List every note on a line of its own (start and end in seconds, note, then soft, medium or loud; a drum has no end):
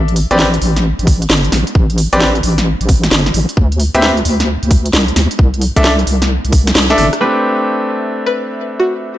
0.00 0.26 A1 loud
0.08 closed hi-hat soft
0.16 open hi-hat loud
0.31 0.59 A1 medium
0.31 0.45 C4 medium
0.31 0.45 G4 medium
0.31 0.45 B4 medium
0.31 0.45 D5 loud
0.31 closed hi-hat medium
0.39 snare loud
0.54 closed hi-hat soft
0.62 0.94 A1 medium
0.62 open hi-hat loud
0.76 snare soft
0.76 closed hi-hat medium
0.99 1.27 A1 medium
0.99 closed hi-hat soft
1.07 kick loud
1.07 open hi-hat loud
1.22 closed hi-hat medium
1.30 1.49 G1 medium
1.30 snare loud
1.44 closed hi-hat soft
1.52 1.64 A1 medium
1.52 snare medium
1.52 open hi-hat medium
1.67 closed hi-hat medium
1.75 2.08 A1 loud
1.75 kick loud
1.90 closed hi-hat soft
1.98 open hi-hat loud
2.13 2.41 A1 medium
2.13 2.27 C4 medium
2.13 2.27 G4 medium
2.13 2.27 B4 medium
2.13 2.27 D5 loud
2.13 closed hi-hat medium
2.20 snare loud
2.35 closed hi-hat medium
2.43 2.76 A1 medium
2.43 open hi-hat loud
2.58 snare soft
2.58 closed hi-hat medium
2.81 3.09 A1 medium
2.81 closed hi-hat soft
2.89 kick loud
2.89 open hi-hat loud
3.03 snare medium
3.03 closed hi-hat medium
3.11 3.31 G1 medium
3.11 snare loud
3.26 snare soft
3.26 closed hi-hat soft
3.34 3.46 A1 loud
3.34 open hi-hat loud
3.49 closed hi-hat medium
3.57 3.90 D2 loud
3.57 kick loud
3.72 closed hi-hat soft
3.80 open hi-hat loud
3.94 4.23 D2 medium
3.94 4.09 C4 medium
3.94 4.09 G4 medium
3.94 4.09 B4 medium
3.94 4.09 E5 loud
3.94 closed hi-hat medium
4.02 snare loud
4.17 closed hi-hat medium
4.25 4.58 D2 medium
4.25 open hi-hat loud
4.40 snare medium
4.40 closed hi-hat medium
4.63 4.91 D2 medium
4.63 closed hi-hat medium
4.71 kick medium
4.71 open hi-hat loud
4.86 closed hi-hat medium
4.93 5.13 C2 medium
4.93 snare loud
5.08 closed hi-hat soft
5.16 5.28 D2 medium
5.16 snare medium
5.16 open hi-hat loud
5.31 closed hi-hat medium
5.39 5.71 C2 loud
5.39 kick loud
5.54 closed hi-hat soft
5.61 open hi-hat loud
5.76 6.04 C2 medium
5.76 5.90 D4 medium
5.76 5.90 A4 medium
5.76 5.90 E5 loud
5.76 kick medium
5.76 closed hi-hat medium
5.84 snare loud
5.99 closed hi-hat medium
6.07 6.39 C2 medium
6.07 open hi-hat loud
6.22 snare medium
6.22 closed hi-hat medium
6.45 6.73 C2 medium
6.45 closed hi-hat medium
6.52 kick medium
6.52 open hi-hat loud
6.67 snare medium
6.67 closed hi-hat medium
6.75 6.95 C2 medium
6.75 snare loud
6.90 7.04 D4 loud
6.90 7.04 A4 medium
6.90 7.04 E5 loud
6.90 snare medium
6.90 closed hi-hat soft
6.98 7.10 G1 medium
6.98 cross-stick medium
6.98 open hi-hat loud
7.13 cross-stick medium
7.13 closed hi-hat medium
7.21 9.18 A3 medium
7.21 9.18 C4 medium
7.21 9.18 D4 medium
7.21 9.18 G4 medium
7.21 9.18 B4 medium
7.21 7.40 B4 medium
7.21 9.18 E5 medium
8.26 8.43 B4 medium
8.80 8.99 F#4 medium